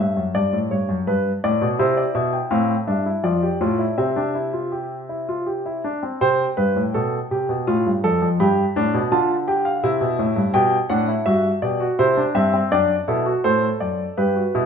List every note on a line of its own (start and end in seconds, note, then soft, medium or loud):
0.00 0.16 G2 medium
0.00 0.21 E5 medium
0.17 0.34 F#2 medium
0.35 0.53 G2 medium
0.35 0.57 D5 medium
0.53 0.71 A2 medium
0.71 0.89 G2 medium
0.71 0.94 C#5 medium
0.89 1.07 F#2 medium
1.07 1.30 G2 medium
1.07 1.30 B4 medium
1.44 1.61 A2 medium
1.44 1.66 D5 medium
1.62 1.79 B2 medium
1.79 2.01 C3 medium
1.79 2.49 E4 medium
1.79 1.97 C5 medium
1.97 2.15 D5 medium
2.15 2.37 B2 medium
2.15 2.32 E5 medium
2.33 2.51 G5 medium
2.51 2.73 A2 medium
2.51 2.74 C4 medium
2.51 2.73 F5 medium
2.88 3.10 G2 medium
2.88 3.05 D4 medium
2.88 3.10 E5 medium
3.06 3.24 E4 medium
3.24 3.47 F2 medium
3.24 3.42 F4 medium
3.24 3.95 D5 medium
3.42 3.60 G4 medium
3.61 3.84 A2 medium
3.61 3.79 F4 medium
3.79 3.97 E4 medium
3.98 5.80 C3 medium
3.98 4.16 C4 medium
3.98 5.80 E5 medium
4.16 4.34 D4 medium
4.35 4.53 E4 medium
4.53 4.72 F4 medium
4.72 4.95 G4 medium
5.09 5.27 E4 medium
5.29 5.47 F4 medium
5.46 5.65 G4 medium
5.66 5.84 E4 medium
5.84 6.02 D4 medium
6.03 6.21 C4 medium
6.21 6.44 C3 medium
6.21 6.44 C5 medium
6.21 8.37 G5 medium
6.57 6.75 G2 medium
6.57 6.80 B4 medium
6.76 6.94 A2 medium
6.94 7.17 B2 medium
6.94 7.17 A4 medium
7.31 7.49 C3 medium
7.31 7.54 G4 medium
7.49 7.67 B2 medium
7.67 7.85 A2 medium
7.67 7.90 F4 medium
7.86 8.04 G2 medium
8.04 8.20 F2 medium
8.04 8.27 A4 loud
8.22 8.40 F2 medium
8.40 8.62 G2 medium
8.40 8.62 G4 medium
8.40 9.10 B5 medium
8.76 8.94 A2 medium
8.76 8.98 D4 medium
8.94 9.12 B2 medium
9.12 9.81 D3 medium
9.12 9.34 F4 medium
9.12 9.34 A5 medium
9.48 9.70 G4 medium
9.48 9.65 G5 medium
9.65 9.82 F5 medium
9.83 10.01 C3 medium
9.83 10.52 E4 medium
9.83 10.53 E5 medium
10.01 10.18 B2 medium
10.19 10.36 A2 medium
10.36 10.54 G2 medium
10.54 10.76 B2 medium
10.54 10.76 G4 medium
10.54 10.76 G5 loud
10.90 11.12 A2 medium
10.90 11.08 D4 medium
10.90 11.12 F#5 medium
11.08 11.26 E4 medium
11.26 11.49 G2 medium
11.26 11.48 F#4 medium
11.26 11.48 E5 loud
11.62 11.85 B2 medium
11.62 11.80 G4 medium
11.62 11.85 D5 medium
11.80 11.98 F#4 medium
11.99 12.22 C3 medium
11.99 12.17 E4 medium
11.99 12.21 C5 medium
12.17 12.35 D4 medium
12.35 12.58 G2 medium
12.35 12.52 C4 medium
12.35 12.58 E5 loud
12.54 12.71 C4 medium
12.72 12.94 F#2 medium
12.72 12.94 D4 medium
12.72 12.94 D5 medium
13.08 13.30 B2 medium
13.08 13.26 E4 medium
13.08 13.30 A4 medium
13.26 13.44 F#4 medium
13.44 13.67 A2 medium
13.44 14.15 A4 medium
13.44 13.67 C5 medium
13.80 14.03 F#2 medium
13.80 14.03 D5 medium
14.17 14.40 G2 medium
14.17 14.35 G4 medium
14.17 14.66 B4 medium
14.36 14.54 F#4 medium
14.55 14.66 B2 medium
14.55 14.66 E4 medium